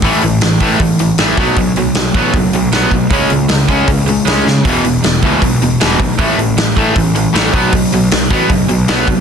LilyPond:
<<
  \new Staff \with { instrumentName = "Overdriven electric guitar" } { \clef bass \time 4/4 \key b \mixolydian \tempo 4 = 156 <a, e a>8 <a, e>8 <a, e>8 <a, e a>8 <a, e>8 <a, e>8 <a, e a>8 <b, fis b>8 | <b, fis>8 <b, fis>8 <b, fis>8 <b, fis b>8 <b, fis>8 <b, fis>8 <b, fis b>8 <b, fis>8 | <cis gis cis'>8 <cis gis>8 <cis gis>8 <cis gis cis'>8 <cis gis>8 <cis gis>8 <cis gis cis'>8 <cis gis>8 | <e, b, e>8 <e, b,>8 <e, b,>8 <e, b, e>8 <e, b,>8 <e, b,>8 <e, b, e>8 <e, b,>8 |
<a, e a>8 <a, e>8 <a, e>8 <a, e a>8 <a, e>8 <a, e>8 <a, e a>8 <b, fis b>8 | <b, fis>8 <b, fis>8 <b, fis>8 <b, fis b>8 <b, fis>8 <b, fis>8 <b, fis b>8 <b, fis>8 | }
  \new Staff \with { instrumentName = "Overdriven electric guitar" } { \clef bass \time 4/4 \key b \mixolydian <a, e a>8 <a, e>8 <a, e>8 <a, e a>8 <a, e>8 <a, e>8 <a, e a>8 <b, fis b>8 | <b, fis>8 <b, fis>8 <b, fis>8 <b, fis b>8 <b, fis>8 <b, fis>8 <b, fis b>8 <b, fis>8 | <cis gis cis'>8 <cis gis>8 <cis gis>8 <cis gis cis'>8 <cis gis>8 <cis gis>8 <cis gis cis'>8 <cis gis>8 | <e, b, e>8 <e, b,>8 <e, b,>8 <e, b, e>8 <e, b,>8 <e, b,>8 <e, b, e>8 <e, b,>8 |
<a, e a>8 <a, e>8 <a, e>8 <a, e a>8 <a, e>8 <a, e>8 <a, e a>8 <b, fis b>8 | <b, fis>8 <b, fis>8 <b, fis>8 <b, fis b>8 <b, fis>8 <b, fis>8 <b, fis b>8 <b, fis>8 | }
  \new Staff \with { instrumentName = "Picked electric bass" } { \clef bass \time 4/4 \key b \mixolydian a,,8 a,,8 a,,8 a,,8 a,,4 a,,8 b,,8 | b,,8 b,,8 b,,8 a,,8 fis,,8 b,,8 b,,8 b,,8 | cis,8 cis,8 cis,8 cis,8 cis,4 cis,8 cis8 | e,,8 e,,8 e,,8 cis,8 b,,8 e,,8 e,,8 b,,8 |
a,,8 a,,8 a,,8 a,,8 a,,4 a,,8 b,,8 | b,,8 b,,8 b,,8 a,,8 fis,,8 b,,8 b,,8 c,8 | }
  \new DrumStaff \with { instrumentName = "Drums" } \drummode { \time 4/4 <hho bd>8 hho8 <hho sn>8 <hho bd>8 <hho bd>8 hho8 <hho sn>8 <hho bd>8 | <hho bd>8 hho8 <hho sn>8 <hho bd>8 <hho bd>8 hho8 <hho sn>8 <hho bd>8 | <hho bd>8 hho8 <hho sn>8 <hho bd>8 <hho bd>8 hho8 <hho sn>8 sn8 | <hho bd>8 hho8 <hho sn>8 <hho bd>8 <hho bd>8 hho8 <hho sn>8 <hho bd>8 |
<hho bd>8 hho8 <hho sn>8 <hho bd>8 <hho bd>8 hho8 <hho sn>8 <hho bd>8 | <hho bd>8 hho8 <hho sn>8 <hho bd>8 <hho bd>8 hho8 <hho sn>8 <hho bd>8 | }
>>